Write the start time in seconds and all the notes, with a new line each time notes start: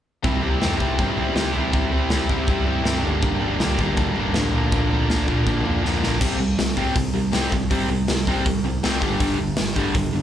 0.23 C2 C3 G3 C4 E4, kick, floor tom
0.42 C2 C3 G3 C4 E4, floor tom
0.60 F2 C3 G3 C4 E4, snare, floor tom
0.77 C3 G3 C4 E4, kick
0.81 C2, floor tom
0.96 G2 C3 G3 C4 E4, kick, floor tom
1.15 C2 C3 G3 C4 E4, floor tom
1.34 C2 C3 G3 C4 E4, snare, floor tom
1.53 C2 C3 G3 C4 E4, floor tom
1.57 C4
1.71 C2 C3 G3 C4 E4, kick, floor tom
1.91 C3 G3 C4 E4, floor tom
2.10 C2 C3 G3 C4 E4, snare, floor tom
2.29 C3 G3 C4 E4, kick, floor tom
2.47 C2 C3 G3 C4 E4, kick, floor tom
2.66 G2 C3 G3 C4 E4, floor tom
2.84 G2 C3 G3 C4 E4, snare, floor tom
3.03 G1 G2 D3 G3 A#3 D4, floor tom
3.22 G1 G2 D3 G3 A#3 D4, kick, floor tom
3.41 G1 G2 D3 G3 A#3 D4, floor tom
3.60 C2 G2 D3 G3 A#3 D4, snare, floor tom
3.79 G1 G2 D3 G3 A#3 D4, kick, floor tom
3.97 D2 G2 D3 G3 A#3 D4, kick, floor tom
4.15 G1 G2 D3, floor tom
4.19 G3 A#3 D4
4.34 A1 G2 D3 G3 A#3 D4, snare, floor tom
4.53 A#1 A#2 D3 F3 A#3 D4, floor tom
4.72 A#1 A#2 D3 F3 A#3 D4, kick, floor tom
4.90 A#2 D3 F3 A#3 D4, floor tom
5.09 A#1 A#2 D3 F3 A#3 D4, snare, floor tom
5.25 A#2 D3 F3 A#3 D4, kick, floor tom
5.45 A#1 A#2 D3 F3 A#3 D4, kick, floor tom
5.63 F2 A#2 D3 F3 A#3 D4, floor tom
5.83 F2 A#2 D3 F3 A#3 D4, snare
6.01 A#1 A#2 D3 F3 A#3 D4, snare
6.19 C2 C3 G3 C4, kick, crash
6.40 C2 C3 G3
6.59 C2 C3 G3, snare, open hi-hat
6.77 C2 C3 G3 C4, kick
6.96 C2 C3 G3, kick, open hi-hat
7.14 C2 C3 G3
7.32 C2 C3 G3 C4, snare, open hi-hat
7.52 C2 C3 G3, kick
7.70 C2 C3 G3 C4, kick, open hi-hat
7.89 C2 C3 G3
8.08 C2 C3 G3, snare, open hi-hat
8.27 C2 C3 G3 C4, kick
8.46 C2 C3 G3, kick, open hi-hat
8.64 C2 C3 G3
8.83 C2 C3 G3 C4, snare, open hi-hat
9.01 G1 G2 D3 G3, kick
9.20 G1 G2 D3 G3, kick, open hi-hat
9.39 G1 G2 D3
9.57 G1 G2 D3, snare, open hi-hat
9.76 G1 G2 D3 G3, kick
9.95 G1 G2 D3, kick, open hi-hat
10.15 G1 G2 D3